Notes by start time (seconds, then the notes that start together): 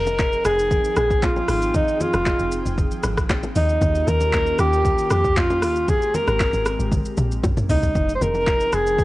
Already playing: F1 F3 C4 D#4 G#4 A#4 G5
0.07 low bongo, shaker
0.19 kick, clap, high bongo, shaker
0.33 shaker
0.45 F1 G#4, cross-stick, shaker
0.59 shaker
0.71 kick, low conga, shaker
0.85 shaker
0.96 A#1 G#4, cross-stick, low bongo, shaker
1.11 kick, shaker
1.23 F4, kick, clap, high bongo, shaker
1.36 high bongo, low bongo, shaker
1.48 G#1 F4, cross-stick, open hi-hat, shaker
1.62 shaker
1.74 D#4, kick, low conga, shaker
1.88 shaker
2.00 F4, high bongo, low conga, shaker
2.14 F1, cross-stick, low bongo, shaker
2.26 kick, clap, high bongo, shaker
2.39 F1, shaker
2.52 shaker
2.66 F1, shaker
2.78 kick, low conga, shaker
2.91 shaker
3.03 G#1, cross-stick, low bongo, shaker
3.18 kick, cross-stick, shaker
3.30 kick, clap, high bongo, shaker
3.43 high bongo, low bongo, shaker
3.55 D#2 D#3 A#3 C#4 D#4 F4 G4, open hi-hat, shaker
3.69 shaker
3.81 D#2, kick, low conga, shaker
3.95 shaker
4.07 D#2 A#4, high bongo, low conga, shaker
4.20 low bongo, shaker
4.33 kick, clap, high bongo, shaker
4.46 shaker
4.59 D#2 G4, cross-stick, shaker
4.73 shaker
4.85 kick, low conga, shaker
4.98 shaker
5.10 F2 G4, cross-stick, low bongo, shaker
5.24 kick, shaker
5.36 A#3 F4, kick, clap, high bongo, shaker
5.50 high bongo, low bongo, shaker
5.62 D#2 F4, cross-stick, open hi-hat, shaker
5.76 shaker
5.88 G#3 C4 G#4, kick, low conga, shaker
6.02 shaker
6.14 A#4, high bongo, low conga, shaker
6.27 G#1, cross-stick, low bongo, shaker
6.40 kick, clap, high bongo, shaker
6.53 G#1, low bongo, shaker
6.66 cross-stick, shaker
6.79 G#1, shaker
6.92 kick, high tom, low conga, shaker
7.05 shaker
7.17 A#1, mid tom, low bongo, shaker
7.32 shaker
7.43 C3 G3 A#3 C#4 E4, kick, mid tom, high bongo, shaker
7.57 mid tom, high bongo, low bongo, shaker
7.69 C2 D#4, floor tom, open hi-hat, shaker
7.83 floor tom, shaker
7.95 F1 F3 C4 D#4 G#4 G5, kick, low conga, shaker
8.09 shaker
8.15 C5
8.21 F1 A#4, high bongo, low conga, shaker
8.34 low bongo, shaker
8.47 kick, clap, high bongo, shaker
8.60 shaker
8.73 F1 G#4, cross-stick, shaker
8.87 shaker
8.99 kick, low conga, shaker